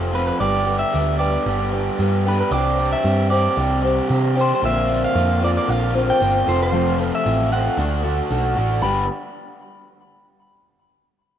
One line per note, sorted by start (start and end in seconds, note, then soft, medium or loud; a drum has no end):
0.00 0.30 F1 medium
0.00 0.13 F3 medium
0.00 0.13 A3 medium
0.00 0.14 A3 medium
0.00 0.12 C4 medium
0.00 0.14 C4 medium
0.00 0.11 F4 medium
0.00 0.14 F4 medium
0.00 0.14 A4 medium
0.00 tambourine soft
0.13 0.39 F3 medium
0.13 0.39 A3 medium
0.13 0.39 C4 medium
0.13 0.38 F4 medium
0.13 0.41 A4 medium
0.13 0.26 B4 medium
0.13 tambourine medium
0.27 0.40 B4 medium
0.27 tambourine soft
0.40 0.83 G1 loud
0.40 0.93 G2 medium
0.40 0.93 D3 medium
0.40 0.68 G3 medium
0.40 0.66 B3 medium
0.40 0.67 D4 medium
0.40 0.66 G4 loud
0.40 1.19 B4 medium
0.40 0.79 D5 loud
0.40 tambourine soft
0.54 tambourine soft
0.66 0.93 G3 medium
0.66 0.92 B3 medium
0.66 0.94 D4 medium
0.66 0.95 G4 medium
0.66 tambourine medium
0.79 1.16 E5 medium
0.79 tambourine soft
0.93 1.36 D2 medium
0.93 1.21 G3 medium
0.93 1.19 B3 medium
0.93 1.20 D4 medium
0.93 1.19 G4 medium
0.93 tambourine medium
1.19 1.46 G3 medium
1.19 1.46 B3 medium
1.19 1.48 D4 medium
1.19 1.47 G4 medium
1.19 1.71 B4 soft
1.19 1.94 D5 medium
1.19 tambourine medium
1.46 1.88 G1 loud
1.46 1.99 G2 loud
1.46 1.99 D3 loud
1.46 1.73 G3 loud
1.46 1.73 B3 medium
1.46 1.72 D4 loud
1.46 1.71 G4 loud
1.46 tambourine medium
1.72 2.27 G3 medium
1.72 2.26 B3 medium
1.72 2.26 D4 medium
1.72 2.25 G4 medium
1.72 1.99 B4 medium
1.99 2.41 G2 medium
1.99 2.25 G3 medium
1.99 2.26 D4 medium
1.99 2.25 G4 medium
1.99 2.24 B4 medium
1.99 tambourine medium
2.12 tambourine soft
2.25 2.51 G3 medium
2.25 2.51 B3 medium
2.25 2.53 D4 medium
2.25 2.50 G4 medium
2.25 2.52 B4 medium
2.25 2.39 B4 medium
2.25 tambourine medium
2.40 2.52 B4 medium
2.51 2.94 C2 loud
2.51 3.05 C3 medium
2.51 3.04 G3 medium
2.51 2.80 C4 medium
2.51 2.79 D4 medium
2.51 2.77 G4 medium
2.51 3.31 C5 medium
2.51 2.92 D5 loud
2.51 tambourine soft
2.65 tambourine soft
2.78 3.05 C4 medium
2.78 3.06 D4 medium
2.78 3.06 G4 medium
2.78 tambourine medium
2.91 3.30 E5 loud
2.91 tambourine soft
3.03 3.47 G2 medium
3.03 3.56 G3 medium
3.03 3.32 C4 medium
3.03 3.30 D4 medium
3.03 3.29 G4 medium
3.03 tambourine medium
3.30 3.58 C4 medium
3.30 3.57 D4 medium
3.30 3.58 G4 medium
3.30 3.84 C5 soft
3.30 3.79 D5 medium
3.30 tambourine medium
3.56 3.99 C2 loud
3.56 4.10 C3 medium
3.56 4.10 G3 medium
3.56 3.84 C4 loud
3.56 3.83 D4 loud
3.56 3.82 G4 loud
3.56 tambourine medium
3.83 4.37 C4 medium
3.83 4.35 D4 medium
3.83 4.34 G4 medium
3.83 4.10 C5 medium
4.10 4.52 C3 medium
4.10 4.36 C4 medium
4.10 4.37 D4 medium
4.10 4.37 G4 medium
4.10 4.35 C5 medium
4.10 tambourine medium
4.23 tambourine soft
4.35 4.62 C4 medium
4.35 4.61 D4 medium
4.35 4.60 G4 medium
4.35 4.63 C5 soft
4.35 tambourine medium
4.41 4.51 C5 medium
4.50 tambourine soft
4.55 4.65 C5 medium
4.62 5.05 A#1 loud
4.62 5.15 A#2 medium
4.62 5.14 D3 medium
4.62 4.89 A#3 medium
4.62 5.42 C4 medium
4.62 4.88 D4 loud
4.62 4.87 F4 medium
4.62 5.41 C5 medium
4.62 5.04 E5 loud
4.62 tambourine soft
4.77 tambourine soft
4.88 5.14 A#3 medium
4.88 5.15 D4 medium
4.88 5.16 F4 medium
4.88 tambourine medium
5.04 5.44 F5 medium
5.04 tambourine soft
5.15 5.57 F2 medium
5.15 5.66 D3 medium
5.15 5.42 A#3 medium
5.15 5.41 D4 medium
5.15 5.39 F4 medium
5.15 tambourine medium
5.41 5.67 A#3 medium
5.41 5.95 C4 soft
5.41 5.67 D4 medium
5.41 5.68 F4 medium
5.41 5.93 C5 medium
5.41 5.49 D5 medium
5.41 tambourine medium
5.57 5.69 D5 medium
5.66 6.10 A#1 loud
5.66 6.19 A#2 loud
5.66 6.20 D3 loud
5.66 5.93 A#3 medium
5.66 5.93 D4 medium
5.66 5.92 F4 loud
5.66 6.09 F5 loud
5.66 tambourine medium
5.93 6.45 A#3 medium
5.93 6.21 C4 soft
5.93 6.45 D4 medium
5.93 6.44 F4 medium
5.93 6.20 C5 medium
6.10 6.49 G5 loud
6.20 6.42 G1 loud
6.20 6.47 A#3 medium
6.20 6.47 C4 medium
6.20 6.47 F4 medium
6.20 6.47 C5 medium
6.20 tambourine loud
6.35 tambourine soft
6.46 7.10 F1 loud
6.46 6.70 F2 medium
6.46 6.71 C3 medium
6.46 6.71 F3 medium
6.46 6.72 A3 medium
6.46 6.71 C4 medium
6.46 6.72 F4 medium
6.46 6.72 A4 medium
6.46 6.61 C5 medium
6.46 tambourine medium
6.60 7.02 C5 medium
6.60 tambourine soft
6.71 7.25 F2 medium
6.71 7.25 C3 medium
6.71 7.00 F3 loud
6.71 6.99 A3 loud
6.71 6.98 C4 medium
6.71 6.97 F4 loud
6.71 7.50 A4 medium
6.71 tambourine soft
6.86 tambourine soft
6.98 7.24 F3 medium
6.98 7.24 A3 medium
6.98 7.25 C4 medium
6.98 7.26 F4 medium
6.98 7.15 B4 medium
6.98 tambourine medium
7.13 7.52 E5 loud
7.13 tambourine soft
7.25 7.68 A1 medium
7.25 7.53 F3 medium
7.25 7.52 A3 medium
7.25 7.51 C4 medium
7.25 7.51 F4 medium
7.25 tambourine loud
7.40 tambourine soft
7.51 7.77 F3 medium
7.51 7.77 A3 medium
7.51 7.77 C4 medium
7.51 7.76 F4 medium
7.51 7.78 A4 medium
7.51 8.27 F#5 medium
7.65 tambourine soft
7.77 8.20 D2 loud
7.77 8.30 D3 medium
7.77 8.04 A3 medium
7.77 8.03 D4 loud
7.77 8.02 F#4 loud
7.77 8.03 A4 medium
7.77 tambourine medium
7.91 tambourine soft
8.03 8.57 A3 medium
8.03 8.56 D4 medium
8.03 8.55 F#4 medium
8.03 8.30 A4 medium
8.03 tambourine soft
8.18 tambourine soft
8.29 8.54 B1 medium
8.29 8.56 A3 medium
8.29 8.56 D4 medium
8.29 8.55 F#4 medium
8.29 8.54 A4 medium
8.29 tambourine medium
8.43 tambourine soft
8.55 8.81 A1 medium
8.55 8.82 A3 medium
8.55 8.81 D4 medium
8.55 8.81 F#4 medium
8.55 8.82 A4 medium
8.70 tambourine soft
8.81 9.07 G1 medium
8.81 9.04 G2 medium
8.81 9.04 D3 loud
8.81 9.04 G3 medium
8.81 9.04 B3 medium
8.81 9.04 D4 loud
8.81 9.04 G4 loud
8.81 9.05 B4 medium
8.81 9.07 B5 medium
8.81 tambourine medium